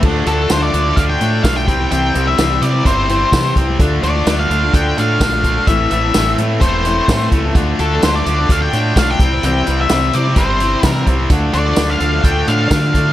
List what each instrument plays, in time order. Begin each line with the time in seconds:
0.03 fingered electric bass D2, steel-string acoustic guitar D3 A3 D4 F4 A4, kick, crash
0.26 fingered electric bass D2, distorted electric guitar D3 D4, steel-string acoustic guitar A3 F4 A4, lead electric guitar A4, closed hi-hat
0.38 steel-string acoustic guitar D4 F4 A4
0.50 fingered electric bass D2, steel-string acoustic guitar D3 A3 D4 F4 A4, lead electric guitar C5, snare, closed hi-hat, tambourine
0.63 lead electric guitar D5
0.73 fingered electric bass D2, distorted electric guitar D3, steel-string acoustic guitar A3 D4 F4 A4, closed hi-hat
0.86 steel-string acoustic guitar D4 F4 A4
0.96 fingered electric bass D2, distorted electric guitar D3 A3 D4, lead electric guitar F5, kick, closed hi-hat
1.10 lead electric guitar G5
1.20 fingered electric bass A2, distorted electric guitar D3, steel-string acoustic guitar A3 D4 F4 A4, closed hi-hat
1.43 fingered electric bass B1, steel-string acoustic guitar D3 A3 D4 F4 A4, lead electric guitar F5, kick, snare, closed hi-hat, tambourine
1.56 lead electric guitar G5
1.67 fingered electric bass C2, distorted electric guitar C3, steel-string acoustic guitar G3 C4 E4 C5, kick, closed hi-hat
1.79 steel-string acoustic guitar G3 C4 E4 C5
1.91 fingered electric bass C2, steel-string acoustic guitar C3 E3 G3 C4 E4 C5, lead electric guitar G5, closed hi-hat
2.14 fingered electric bass C2, distorted electric guitar C3, steel-string acoustic guitar G3 C4 E4 C5, closed hi-hat
2.26 steel-string acoustic guitar G3 C4 E4 C5, lead electric guitar E5
2.38 fingered electric bass C2, steel-string acoustic guitar C3 E3 G3 C4 E4 C5, snare, closed hi-hat, tambourine
2.61 fingered electric bass C3, distorted electric guitar C3, steel-string acoustic guitar G3 C4 E4 C5, lead electric guitar D5, closed hi-hat
2.73 steel-string acoustic guitar G3 C4 E4 C5
2.85 fingered electric bass G1, distorted electric guitar C3 G3 C4, lead electric guitar C5, kick, closed hi-hat
3.08 distorted electric guitar C3, steel-string acoustic guitar G3 C4 E4 C5, closed hi-hat
3.32 fingered electric bass C3, steel-string acoustic guitar C3 E3 G3 C4 E4 C5, kick, snare, closed hi-hat, tambourine
3.56 fingered electric bass C2, distorted electric guitar C3, steel-string acoustic guitar G3 C4 E4 C5, kick, closed hi-hat
3.67 steel-string acoustic guitar G3 C4 E4 C5
3.79 fingered electric bass D2, steel-string acoustic guitar D3 A3 D4 F4 A4, kick, closed hi-hat
4.03 fingered electric bass D2, distorted electric guitar D3, steel-string acoustic guitar A3 D4 F4 A4, lead electric guitar D5, closed hi-hat
4.14 steel-string acoustic guitar D4 F4 A4
4.26 fingered electric bass D2, steel-string acoustic guitar D3 A3 D4 F4 A4, snare, closed hi-hat, tambourine
4.39 lead electric guitar F5
4.50 fingered electric bass D2, distorted electric guitar D3, steel-string acoustic guitar A3 D4 F4 A4, closed hi-hat
4.61 steel-string acoustic guitar D4 F4 A4
4.73 fingered electric bass D2, distorted electric guitar D3 A3 D4, lead electric guitar G5, kick, closed hi-hat
4.97 fingered electric bass A2, distorted electric guitar D3, steel-string acoustic guitar A3 D4 F4 A4, lead electric guitar F5, closed hi-hat
5.20 fingered electric bass A#1, steel-string acoustic guitar D3 A3 D4 F4 A4, kick, snare, closed hi-hat, tambourine
5.44 distorted electric guitar D3, steel-string acoustic guitar A3 D4 F4 A4, kick, closed hi-hat
5.57 steel-string acoustic guitar D4 F4 A4
5.67 fingered electric bass A1, steel-string acoustic guitar A2 E3 A3 C4 E4 A4, lead electric guitar E5, kick, closed hi-hat
5.91 fingered electric bass A1, distorted electric guitar A2 E3, steel-string acoustic guitar A3 C4 E4 A4, lead electric guitar E5, closed hi-hat
6.04 steel-string acoustic guitar A3 C4 E4 A4
6.14 fingered electric bass A1, steel-string acoustic guitar A2 E3 A3 C4 E4 A4, snare, closed hi-hat, tambourine
6.38 fingered electric bass A2, distorted electric guitar A2 E3, steel-string acoustic guitar A3 C4 E4 A4, closed hi-hat
6.51 steel-string acoustic guitar A3 C4 E4 A4
6.61 fingered electric bass E1, distorted electric guitar A2 E3 A3, lead electric guitar C5, kick, closed hi-hat
6.85 distorted electric guitar A2 E3, steel-string acoustic guitar A3 C4 E4 A4, closed hi-hat
7.08 fingered electric bass A2, steel-string acoustic guitar A2 E3 A3 C4 E4 A4, kick, snare, closed hi-hat, tambourine
7.32 fingered electric bass C#2, distorted electric guitar A2 E3, steel-string acoustic guitar A3 C4 E4 A4, kick, closed hi-hat
7.46 steel-string acoustic guitar A3 C4 E4 A4
7.55 fingered electric bass D2, steel-string acoustic guitar D3 A3 D4 F4 A4, kick, closed hi-hat
7.79 fingered electric bass D2, distorted electric guitar D3, steel-string acoustic guitar A3 D4 F4 A4, lead electric guitar A4, closed hi-hat
7.92 steel-string acoustic guitar D4 F4 A4
8.03 fingered electric bass D2, steel-string acoustic guitar D3 A3 D4 F4 A4, lead electric guitar C5, snare, closed hi-hat, tambourine
8.16 lead electric guitar D5
8.26 fingered electric bass D2, distorted electric guitar D3, steel-string acoustic guitar A3 D4 F4 A4, closed hi-hat
8.39 steel-string acoustic guitar D4 F4 A4
8.49 fingered electric bass D2, distorted electric guitar D3 A3 D4, lead electric guitar F5, kick, closed hi-hat
8.62 lead electric guitar G5
8.73 fingered electric bass A2, distorted electric guitar D3, steel-string acoustic guitar A3 D4 F4 A4, closed hi-hat
8.96 fingered electric bass B1, steel-string acoustic guitar D3 A3 D4 F4 A4, lead electric guitar F5, kick, snare, closed hi-hat, tambourine
9.10 lead electric guitar G5
9.19 fingered electric bass C2, distorted electric guitar C3, steel-string acoustic guitar G3 C4 E4 C5, kick, closed hi-hat
9.33 steel-string acoustic guitar G3 C4 E4 C5
9.43 fingered electric bass C2, steel-string acoustic guitar C3 E3 G3 C4 E4 C5, lead electric guitar G5, closed hi-hat
9.66 fingered electric bass C2, distorted electric guitar C3 C4, steel-string acoustic guitar G3 E4 C5, closed hi-hat
9.80 steel-string acoustic guitar G3 C4 E4 C5, lead electric guitar E5
9.89 fingered electric bass C2, steel-string acoustic guitar C3 E3 G3 C4 E4, snare, closed hi-hat, tambourine
9.94 steel-string acoustic guitar C5
10.13 distorted electric guitar C3, fingered electric bass C3, steel-string acoustic guitar G3 C4 E4, lead electric guitar D5, closed hi-hat
10.17 steel-string acoustic guitar C5
10.27 steel-string acoustic guitar G3 C4 C5
10.36 fingered electric bass G1, distorted electric guitar C3 G3 C4, lead electric guitar C5, kick, closed hi-hat
10.60 distorted electric guitar C3, steel-string acoustic guitar G3 C4 E4 C5, closed hi-hat
10.83 steel-string acoustic guitar C3 E3 G3 C4 E4 C5, fingered electric bass C3, lead electric guitar A#4, kick, snare, closed hi-hat, tambourine
11.07 fingered electric bass C2, distorted electric guitar C3, steel-string acoustic guitar G3 C4 E4 C5, kick, closed hi-hat
11.19 steel-string acoustic guitar G3 C4 E4 C5
11.30 fingered electric bass D2, steel-string acoustic guitar D3 A3 D4 F4 A4, kick, closed hi-hat
11.53 fingered electric bass D2, distorted electric guitar D3, steel-string acoustic guitar A3 D4 F4 A4, lead electric guitar D5, closed hi-hat
11.67 steel-string acoustic guitar D4 F4 A4
11.76 fingered electric bass D2, steel-string acoustic guitar D3 A3 D4 F4 A4, snare, closed hi-hat, tambourine
11.91 lead electric guitar F5
12.00 fingered electric bass D2, distorted electric guitar D3, steel-string acoustic guitar A3 D4 F4 A4, closed hi-hat
12.13 steel-string acoustic guitar D4 F4 A4
12.24 fingered electric bass D2, distorted electric guitar D3 A3 D4, lead electric guitar G5, kick, closed hi-hat
12.48 fingered electric bass A2, distorted electric guitar D3, steel-string acoustic guitar A3 D4 F4 A4, lead electric guitar F5, closed hi-hat
12.71 fingered electric bass D3, steel-string acoustic guitar D3 A3 D4 F4 A4, kick, snare, closed hi-hat, tambourine
12.94 distorted electric guitar D3, steel-string acoustic guitar A3 D4 F4 A4, kick, closed hi-hat
13.06 steel-string acoustic guitar D4 F4 A4